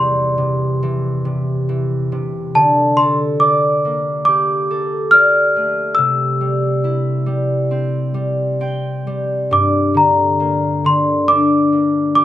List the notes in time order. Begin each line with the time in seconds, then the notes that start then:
Already playing: E2 C3 G3 A3 C6
0.38 C3
0.83 E3
1.25 C3
1.69 E3
2.12 C3
2.55 D3 A5
2.97 A4 C6
3.40 D5 D6
3.85 A#3
4.25 G4 D6
4.71 A4
5.11 D5 F6
5.56 A3
5.95 C3 E6
6.41 G3
6.84 E4
7.26 G3
7.71 C4
8.14 G3
8.61 C4 G5
9.07 G3
9.51 G2 D6
9.94 D3 A#5
10.40 A#3
10.84 D3 C6
11.28 D4 D6
11.72 A#3
12.15 G4 D6